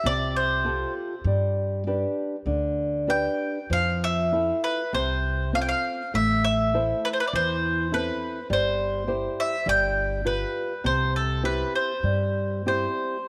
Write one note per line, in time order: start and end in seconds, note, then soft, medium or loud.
0.04 0.83 C2 medium
0.04 0.64 C3 medium
0.04 0.36 D5 medium
0.36 0.92 C5 medium
0.65 1.13 F4 soft
0.65 1.14 G4 soft
0.65 1.14 A4 soft
1.24 2.03 G2 medium
1.24 1.85 G3 medium
1.87 2.35 D4 soft
1.87 2.35 G4 soft
1.87 2.35 B4 soft
2.46 3.26 D2 medium
2.46 3.06 D3 medium
3.07 3.57 D4 soft
3.07 3.58 G4 soft
3.07 3.58 B4 soft
3.07 3.72 G5 medium
3.70 4.50 F2 medium
3.70 4.30 F3 medium
3.70 4.03 F5 medium
4.04 4.63 E5 medium
4.32 4.81 E4 soft
4.32 4.82 F4 soft
4.32 4.82 A4 soft
4.64 4.94 B4 medium
4.93 5.71 C2 medium
4.93 5.51 C3 medium
4.93 5.50 C5 medium
5.53 6.01 C4 soft
5.53 6.02 F4 soft
5.53 6.02 A4 soft
5.53 5.61 F5 medium
5.62 5.68 G5 medium
5.69 6.15 F5 medium
6.14 6.92 A1 medium
6.14 6.72 A3 medium
6.14 6.43 E5 medium
6.44 7.00 E5 medium
6.74 7.21 E4 soft
6.74 7.22 A4 soft
6.74 7.22 C5 soft
7.05 7.08 B4 medium
7.13 7.19 C5 medium
7.20 7.27 B4 medium
7.27 7.34 D5 medium
7.33 8.09 E2 medium
7.33 7.91 E3 medium
7.33 7.93 C5 medium
7.92 8.39 C4 soft
7.92 8.38 E4 soft
7.92 8.39 A4 soft
7.92 8.47 B4 medium
8.50 9.26 G1 medium
8.50 9.06 G3 medium
8.50 9.41 C5 medium
9.07 9.55 E4 soft
9.07 9.55 G4 soft
9.07 9.55 C5 soft
9.40 9.69 E5 medium
9.66 10.43 G1 medium
9.66 10.24 G3 medium
9.66 10.28 G5 medium
10.25 10.72 F4 soft
10.25 10.73 G4 soft
10.25 10.73 B4 soft
10.25 10.86 B4 medium
10.84 11.62 C2 medium
10.84 11.42 C3 medium
10.84 11.13 C5 medium
11.16 11.45 A4 medium
11.43 11.91 C4 soft
11.43 11.91 E4 soft
11.43 11.92 G4 soft
11.43 11.75 B4 medium
11.76 12.67 C5 medium
12.03 12.85 G2 medium
12.03 12.65 G3 medium
12.66 13.16 C4 soft
12.66 13.17 E4 soft
12.66 13.17 G4 soft
12.66 13.28 C5 medium